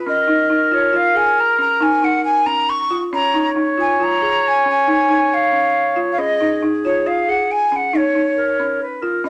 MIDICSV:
0, 0, Header, 1, 4, 480
1, 0, Start_track
1, 0, Key_signature, -5, "major"
1, 0, Tempo, 436999
1, 71, Time_signature, 7, 2, 24, 8
1, 10205, End_track
2, 0, Start_track
2, 0, Title_t, "Flute"
2, 0, Program_c, 0, 73
2, 94, Note_on_c, 0, 75, 70
2, 810, Note_on_c, 0, 73, 61
2, 827, Note_off_c, 0, 75, 0
2, 1056, Note_on_c, 0, 77, 69
2, 1072, Note_off_c, 0, 73, 0
2, 1283, Note_on_c, 0, 80, 69
2, 1300, Note_off_c, 0, 77, 0
2, 1539, Note_on_c, 0, 82, 74
2, 1555, Note_off_c, 0, 80, 0
2, 1757, Note_off_c, 0, 82, 0
2, 1764, Note_on_c, 0, 82, 67
2, 2006, Note_on_c, 0, 80, 73
2, 2023, Note_off_c, 0, 82, 0
2, 2246, Note_on_c, 0, 78, 64
2, 2262, Note_off_c, 0, 80, 0
2, 2461, Note_off_c, 0, 78, 0
2, 2467, Note_on_c, 0, 80, 70
2, 2705, Note_on_c, 0, 82, 70
2, 2722, Note_off_c, 0, 80, 0
2, 2961, Note_on_c, 0, 85, 75
2, 2978, Note_off_c, 0, 82, 0
2, 3320, Note_off_c, 0, 85, 0
2, 3451, Note_on_c, 0, 82, 75
2, 3840, Note_off_c, 0, 82, 0
2, 4179, Note_on_c, 0, 80, 73
2, 4430, Note_on_c, 0, 82, 77
2, 4447, Note_off_c, 0, 80, 0
2, 4921, Note_on_c, 0, 80, 72
2, 4938, Note_off_c, 0, 82, 0
2, 5141, Note_off_c, 0, 80, 0
2, 5167, Note_on_c, 0, 80, 68
2, 5369, Note_off_c, 0, 80, 0
2, 5399, Note_on_c, 0, 80, 71
2, 5863, Note_on_c, 0, 77, 61
2, 5880, Note_off_c, 0, 80, 0
2, 6572, Note_off_c, 0, 77, 0
2, 6724, Note_on_c, 0, 77, 56
2, 6795, Note_on_c, 0, 75, 82
2, 6811, Note_off_c, 0, 77, 0
2, 7278, Note_off_c, 0, 75, 0
2, 7521, Note_on_c, 0, 73, 61
2, 7765, Note_on_c, 0, 77, 69
2, 7781, Note_off_c, 0, 73, 0
2, 8012, Note_on_c, 0, 78, 69
2, 8028, Note_off_c, 0, 77, 0
2, 8254, Note_on_c, 0, 80, 75
2, 8270, Note_off_c, 0, 78, 0
2, 8452, Note_off_c, 0, 80, 0
2, 8452, Note_on_c, 0, 80, 48
2, 8524, Note_on_c, 0, 78, 67
2, 8540, Note_off_c, 0, 80, 0
2, 8758, Note_on_c, 0, 73, 61
2, 8775, Note_off_c, 0, 78, 0
2, 9696, Note_off_c, 0, 73, 0
2, 10167, Note_on_c, 0, 75, 73
2, 10205, Note_off_c, 0, 75, 0
2, 10205, End_track
3, 0, Start_track
3, 0, Title_t, "Clarinet"
3, 0, Program_c, 1, 71
3, 73, Note_on_c, 1, 70, 76
3, 3142, Note_off_c, 1, 70, 0
3, 3429, Note_on_c, 1, 73, 84
3, 6790, Note_on_c, 1, 68, 70
3, 6807, Note_off_c, 1, 73, 0
3, 8897, Note_off_c, 1, 68, 0
3, 9190, Note_on_c, 1, 70, 64
3, 9639, Note_off_c, 1, 70, 0
3, 9684, Note_on_c, 1, 71, 69
3, 9904, Note_on_c, 1, 70, 60
3, 9921, Note_off_c, 1, 71, 0
3, 10149, Note_off_c, 1, 70, 0
3, 10205, End_track
4, 0, Start_track
4, 0, Title_t, "Marimba"
4, 0, Program_c, 2, 12
4, 71, Note_on_c, 2, 61, 62
4, 234, Note_off_c, 2, 61, 0
4, 304, Note_on_c, 2, 63, 52
4, 469, Note_off_c, 2, 63, 0
4, 547, Note_on_c, 2, 63, 58
4, 711, Note_off_c, 2, 63, 0
4, 785, Note_on_c, 2, 65, 54
4, 950, Note_off_c, 2, 65, 0
4, 1022, Note_on_c, 2, 65, 63
4, 1188, Note_off_c, 2, 65, 0
4, 1261, Note_on_c, 2, 68, 57
4, 1590, Note_off_c, 2, 68, 0
4, 1743, Note_on_c, 2, 61, 57
4, 1909, Note_off_c, 2, 61, 0
4, 1983, Note_on_c, 2, 63, 63
4, 2150, Note_off_c, 2, 63, 0
4, 2225, Note_on_c, 2, 63, 54
4, 2553, Note_off_c, 2, 63, 0
4, 2707, Note_on_c, 2, 61, 57
4, 3035, Note_off_c, 2, 61, 0
4, 3192, Note_on_c, 2, 65, 58
4, 3356, Note_off_c, 2, 65, 0
4, 3436, Note_on_c, 2, 61, 72
4, 3599, Note_off_c, 2, 61, 0
4, 3669, Note_on_c, 2, 63, 56
4, 3835, Note_off_c, 2, 63, 0
4, 3908, Note_on_c, 2, 63, 55
4, 4074, Note_off_c, 2, 63, 0
4, 4149, Note_on_c, 2, 65, 53
4, 4314, Note_off_c, 2, 65, 0
4, 4393, Note_on_c, 2, 65, 60
4, 4557, Note_off_c, 2, 65, 0
4, 4635, Note_on_c, 2, 68, 55
4, 4961, Note_off_c, 2, 68, 0
4, 5114, Note_on_c, 2, 61, 57
4, 5278, Note_off_c, 2, 61, 0
4, 5355, Note_on_c, 2, 63, 63
4, 5519, Note_off_c, 2, 63, 0
4, 5593, Note_on_c, 2, 63, 56
4, 5920, Note_off_c, 2, 63, 0
4, 6067, Note_on_c, 2, 61, 54
4, 6395, Note_off_c, 2, 61, 0
4, 6548, Note_on_c, 2, 65, 57
4, 6714, Note_off_c, 2, 65, 0
4, 6793, Note_on_c, 2, 61, 62
4, 6957, Note_off_c, 2, 61, 0
4, 7036, Note_on_c, 2, 63, 55
4, 7200, Note_off_c, 2, 63, 0
4, 7278, Note_on_c, 2, 63, 57
4, 7441, Note_off_c, 2, 63, 0
4, 7523, Note_on_c, 2, 65, 53
4, 7684, Note_off_c, 2, 65, 0
4, 7758, Note_on_c, 2, 65, 60
4, 7921, Note_off_c, 2, 65, 0
4, 8002, Note_on_c, 2, 68, 56
4, 8324, Note_off_c, 2, 68, 0
4, 8479, Note_on_c, 2, 61, 55
4, 8641, Note_off_c, 2, 61, 0
4, 8715, Note_on_c, 2, 63, 62
4, 8878, Note_off_c, 2, 63, 0
4, 8955, Note_on_c, 2, 63, 53
4, 9279, Note_off_c, 2, 63, 0
4, 9443, Note_on_c, 2, 61, 55
4, 9764, Note_off_c, 2, 61, 0
4, 9914, Note_on_c, 2, 65, 54
4, 10076, Note_off_c, 2, 65, 0
4, 10151, Note_on_c, 2, 61, 74
4, 10205, Note_off_c, 2, 61, 0
4, 10205, End_track
0, 0, End_of_file